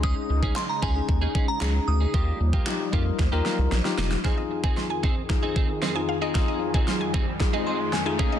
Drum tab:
CP |----x-------x---|----x-----------|----------------|----------------|
SD |----o-------o---|----o---o-o-oooo|o---o---o---o---|o---o---o---o---|
BD |o--o--o-o-o-----|o--o--o-o-------|o--o--o-o-o-----|o--o--o-o-----o-|